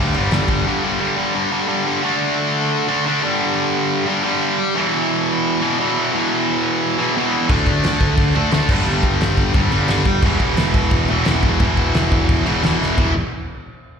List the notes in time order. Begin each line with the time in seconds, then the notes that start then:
Already playing: D2 G2
0.00 D3 G3
0.14 G1 G2 D3 G3, crash
0.31 G1 G2 D3 G3, snare, crash
0.48 G1 G2 D3 G3, kick, crash
0.66 G2 D3 G3
0.83 G2 D3 G3
1.00 G2 D3 G3
1.16 G2 D3 G3
1.34 G2 D3 G3
1.51 G2 D3 G3
1.68 G2 D3 G3
1.86 G2 D3 G3
2.02 D3 A3 D4
2.88 D3 A3 D4
3.05 D3 A3 D4
3.22 G2 D3 G3
4.07 G2 D3 G3
4.24 G2 D3 G3
4.75 E2 B2 E3
5.61 E2 B2 E3
5.78 E2 B2 E3
6.12 E2 B2 E3
6.98 E2 B2 E3
7.16 E2 B2 E3
7.49 D2 D3 A3 D4, kick, crash
7.67 D2, kick, crash
7.84 D2, snare, crash
8.01 D2, kick, crash
8.18 D2, kick, crash
8.35 D2 D3 A3 D4, crash
8.51 D2 D3 A3 D4, snare, crash
8.69 G1 G2 D3 G3, kick, crash
8.86 G1, crash
9.03 G1, kick, crash
9.21 G1, snare, crash
9.37 G1, kick, crash
9.54 G1 G2 D3 G3, kick, crash
9.71 G1 G2 D3 G3, crash
9.88 G1, snare, crash
10.05 G1, kick, crash
10.22 E1 E2 B2 E3, kick, crash
10.40 E1, kick, crash
10.57 E1, snare, crash
10.74 E1, kick, crash
10.91 E1, kick, crash
11.08 E1 B2 E3, crash
11.12 E2
11.25 E1 E2 B2 E3, snare, crash
11.43 E1, kick, crash
11.60 E1 E2 B2, kick, crash
11.64 E3
11.77 E1, kick, crash
11.94 E1, snare, crash
12.12 E1, kick, crash
12.29 E1, kick, crash
12.46 E1 E2 B2 E3, crash
12.63 E1 E2 B2 E3, snare, crash
12.81 E1, snare
12.98 E1 E2 B2 E3, kick, crash